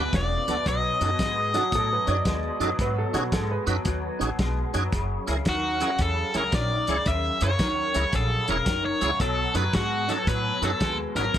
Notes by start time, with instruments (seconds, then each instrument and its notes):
Already playing: clean electric guitar E2 B2
0.00 overdriven electric guitar B4
0.13 upright bass E1, clean electric guitar E2 C#3, overdriven electric guitar D5, kick, snare, closed hi-hat
0.47 upright bass C#2, clean electric guitar E2 B2, tonewheel organ B3 D4 F#4 A4, snare, closed hi-hat
0.66 upright bass B1, clean electric guitar B2 F#3, overdriven electric guitar D#5, kick, snare, closed hi-hat
1.00 upright bass F#2, clean electric guitar B2 F#3, tonewheel organ C#4 D#4 F#4 A4, snare, closed hi-hat
1.19 clean electric guitar B2 G#3, kick, snare, closed hi-hat
1.54 clean electric guitar B2 F#3, tonewheel organ C#4 D#4 F#4 A4, upright piano F#4, snare, closed hi-hat
1.72 upright bass A2, clean electric guitar B2 F#3, upright piano A4, kick, snare, closed hi-hat
1.93 upright piano B4
2.07 upright bass F#2, clean electric guitar B2 F#3, tonewheel organ C#4 D#4 F#4 G#4, upright piano C#5, snare, closed hi-hat
2.11 upright piano D5
2.25 upright bass D#2, clean electric guitar B2 G#3, kick, snare, closed hi-hat
2.60 upright bass F#2, clean electric guitar B2 F#3, tonewheel organ C#4 D#4 F#4 A4, snare, closed hi-hat
2.79 upright bass G#2, clean electric guitar B2 F#3, upright piano B4, kick, snare, closed hi-hat
2.98 upright piano A4
3.13 clean electric guitar B2 F#3, upright bass B2, tonewheel organ C#4 D#4 F#4 G#4, upright piano F#4, snare, closed hi-hat
3.32 upright bass G#2, clean electric guitar B2 G#3, upright piano A4, kick, snare, closed hi-hat
3.51 upright piano B4
3.66 upright bass F#2, clean electric guitar B2 F#3, tonewheel organ C#4 D#4 F#4 B4, snare, closed hi-hat
3.85 upright bass D#2, clean electric guitar B2 F#3, kick, snare, closed hi-hat
4.19 upright bass A1, clean electric guitar B2 F#3, tonewheel organ C#4 D#4 F#4 G#4, snare, closed hi-hat
4.39 upright bass B1, clean electric guitar B2 G#3, kick, snare, closed hi-hat
4.74 upright bass F#2, clean electric guitar B2 F#3, tonewheel organ C#4 D#4 F#4 G#4, snare, closed hi-hat
4.92 upright bass F#1, clean electric guitar F#2 C#3, kick, snare, closed hi-hat
5.27 upright bass C#2, clean electric guitar F#2 C#3, tonewheel organ C#4 E4 G#4 A#4, snare, closed hi-hat
5.45 upright bass D#2, clean electric guitar F#2 D#3, overdriven electric guitar F#4, kick, snare, closed hi-hat
5.80 clean electric guitar F#2 C#3, tonewheel organ C#4 E4 G#4 A#4, snare, closed hi-hat
5.99 upright bass E2, clean electric guitar F#2 C#3, overdriven electric guitar A4, kick, snare, closed hi-hat
6.34 upright bass C#2, clean electric guitar F#2 C#3, tonewheel organ C#4 E4 G#4 C#5, overdriven electric guitar A#4, snare, closed hi-hat
6.52 upright bass A#1, clean electric guitar F#2 D#3, overdriven electric guitar D5, kick, snare, closed hi-hat
6.87 upright bass C#2, clean electric guitar F#2 C#3, tonewheel organ C#4 E4 G#4 C#5, snare, closed hi-hat
7.06 upright bass D#2, clean electric guitar F#2 C#3, overdriven electric guitar E5, kick, snare, closed hi-hat
7.41 upright bass F#2, clean electric guitar F#2 C#3, tonewheel organ C#4 E4 G#4 C#5, overdriven electric guitar C#5, snare, closed hi-hat
7.59 clean electric guitar F#2 D#3, kick, snare, closed hi-hat
7.94 upright bass C#2, clean electric guitar F#2 C#3, tonewheel organ C#4 E4 G#4 A#4, snare, closed hi-hat
8.13 upright bass A#1, clean electric guitar F#2 C#3, overdriven electric guitar A4, kick, snare, closed hi-hat
8.48 upright bass E1, clean electric guitar F#2 C#3, tonewheel organ C#4 E4 G#4 C#5, overdriven electric guitar A#4, snare, closed hi-hat
8.66 upright bass F#1, clean electric guitar F#2 D#3, kick, snare, closed hi-hat
8.85 overdriven electric guitar C#5
9.01 upright bass C#2, clean electric guitar F#2 C#3, tonewheel organ C#4 E4 G#4 C#5, snare, closed hi-hat
9.20 upright bass B1, clean electric guitar B2 F#3, overdriven electric guitar A4, kick, snare, closed hi-hat
9.54 upright bass F#2, clean electric guitar B2 F#3, tonewheel organ C#4 D#4 F#4 A4, overdriven electric guitar B4, snare, closed hi-hat
9.73 upright bass G#2, clean electric guitar B2 G#3, overdriven electric guitar F#4, kick, snare, closed hi-hat
10.08 clean electric guitar B2 F#3, tonewheel organ C#4 D#4 F#4 A4, overdriven electric guitar A4, snare, closed hi-hat
10.27 upright bass A2, clean electric guitar B2 F#3, overdriven electric guitar B4, kick, snare, closed hi-hat
10.62 upright bass F#2, clean electric guitar B2 F#3, tonewheel organ C#4 D#4 F#4 A4, overdriven electric guitar G#4 A4, snare, closed hi-hat
10.80 upright bass D#2, clean electric guitar B2 G#3, kick, snare, closed hi-hat
11.15 upright bass G#1, clean electric guitar B2 F#3, tonewheel organ C#4 D#4 F#4 B4, overdriven electric guitar A#4, snare, closed hi-hat
11.34 upright bass F#1, clean electric guitar F#2 C#3, kick, closed hi-hat